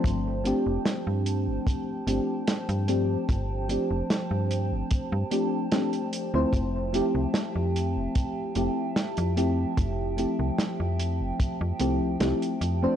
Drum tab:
HH |x-x-x-x-x-x-xxx-|x-x-x-x-x-x-xxx-|x-x-x-x-x-x-xxx-|x-x-x-x-x-x-xxx-|
SD |----o-------o---|----o-------o---|----o-------o---|----o-------o---|
BD |o-------o-------|o-------o-------|o-------o-------|o-------o-------|